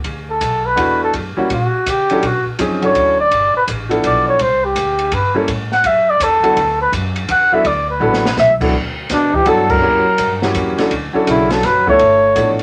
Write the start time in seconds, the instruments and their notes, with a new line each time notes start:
0.04 upright bass D2, kick, ride
0.31 flugelhorn A4
0.41 upright bass B1, kick, hi-hat pedal, ride
0.66 flugelhorn B4
0.76 upright bass E2, grand piano A3 B3 D4 E4 F#4, kick, ride
1.04 flugelhorn A4
1.13 upright bass F#2, kick, ride
1.37 grand piano G3 A#3 C#4 E4 F#4, muted upright bass stroke
1.50 upright bass A#2, flugelhorn F#4, kick, ride
1.72 muted upright bass stroke
1.86 upright bass C#3, flugelhorn G4, kick, hi-hat pedal, ride
2.10 grand piano F#3 C#4 D4 E4 A4, ride
2.23 upright bass B2, flugelhorn F#4, kick, ride
2.45 muted upright bass stroke
2.59 upright bass F#2, grand piano F3 C4 C#4 D#4 G#4, kick, hi-hat pedal, ride
2.82 grand piano F#3 C#4 D4 E4 A4, flugelhorn C#5, ride
2.95 upright bass D2, kick, ride
3.20 flugelhorn D5
3.31 upright bass G1, kick, ride
3.54 flugelhorn B4, muted upright bass stroke
3.68 upright bass A1, kick, hi-hat pedal, ride
3.89 grand piano F3 B3 D4 E4 A4, ride
4.04 upright bass B1, flugelhorn D5, kick, ride
4.29 flugelhorn C#5
4.39 upright bass C2, flugelhorn C5, kick, ride
4.65 flugelhorn G4
4.75 upright bass D2, kick, hi-hat pedal, ride
4.99 ride
5.12 upright bass G2, flugelhorn B4, kick, ride
5.35 grand piano G3 A#3 C#4 E4 A4
5.48 upright bass A2, kick, ride
5.72 flugelhorn F#5, snare
5.84 upright bass F#2, flugelhorn E5, kick, ride
6.10 flugelhorn D5
6.20 upright bass E2, flugelhorn A4, kick, hi-hat pedal, ride
6.42 grand piano F#3 B3 D4 E4 A4, muted upright bass stroke, ride
6.56 upright bass D2, kick, ride
6.82 flugelhorn B4
6.92 upright bass F#2, kick, hi-hat pedal, ride
7.16 ride
7.28 upright bass E2, flugelhorn F#5, kick, ride
7.52 grand piano F#3 B3 D4 E4 A4, flugelhorn E5
7.65 upright bass D2, flugelhorn D5, kick, ride
7.90 flugelhorn B4
8.00 upright bass A1, grand piano F#3 B3 D4 E4 A4
8.13 snare
8.25 snare
8.37 upright bass B1, flugelhorn E5, snare, hi-hat pedal
8.60 grand piano F#3 B3 D4 E4 A4, kick, crash
8.73 upright bass D2, kick
9.09 upright bass E2, trombone B2, flugelhorn D4, kick, snare, hi-hat pedal, ride
9.33 trombone E3, flugelhorn G4, muted upright bass stroke, kick
9.45 upright bass G2, trombone F#3, grand piano F#3 B3 D4 E4 A4, flugelhorn A4, kick, ride
9.68 trombone F#3, flugelhorn A#4, kick, crash
9.81 upright bass F#2, grand piano F#3 A#3 C#4 E4 G4
10.18 upright bass G2, kick, hi-hat pedal, ride
10.42 grand piano F#3 A#3 C#4 E4 G4, snare
10.55 upright bass E2, kick, hi-hat pedal, ride
10.78 grand piano F#3 C#4 D4 E4 A4, snare, ride
10.91 upright bass D2, kick, ride
11.13 grand piano F#3 C#4 D4 E4 A4, muted upright bass stroke
11.27 upright bass B1, trombone C#3, flugelhorn E4, kick, hi-hat pedal, ride
11.50 trombone F#3, flugelhorn A4, snare, ride
11.63 upright bass F#1, trombone F#3, flugelhorn B4, kick, snare, ride
11.86 grand piano F3 B3 D4 E4 A4, trombone A3, flugelhorn C#5, kick
11.99 upright bass G1, kick, ride
12.35 upright bass A1, grand piano F3 B3 D4 E4 A4, kick, hi-hat pedal, ride
12.59 ride